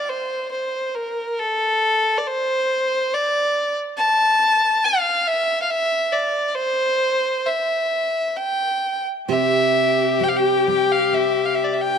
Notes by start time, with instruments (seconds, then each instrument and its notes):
Already playing: fiddle D5
0.09 fiddle C5
0.51 fiddle C5
0.95 fiddle A#4
1.39 fiddle A4
2.18 fiddle D5
2.27 fiddle C5
3.14 fiddle D5
3.98 fiddle A5
4.84 fiddle F5
5.27 fiddle E5
5.62 fiddle F5
5.70 fiddle E5
6.12 fiddle D5
6.48 fiddle D5
6.55 fiddle C5
7.47 fiddle E5
8.37 fiddle G5
9.29 steel-string acoustic guitar C3 G4, viola G4, fiddle E5
10.20 steel-string acoustic guitar G3 C4 G4, fiddle G5
10.29 fiddle F5
10.37 fiddle G5
10.68 steel-string acoustic guitar G3, fiddle G5
10.92 fiddle F5
11.13 steel-string acoustic guitar C4, fiddle E5
11.45 fiddle F5
11.55 fiddle E5
11.64 fiddle D5
11.73 fiddle E5
11.81 fiddle G5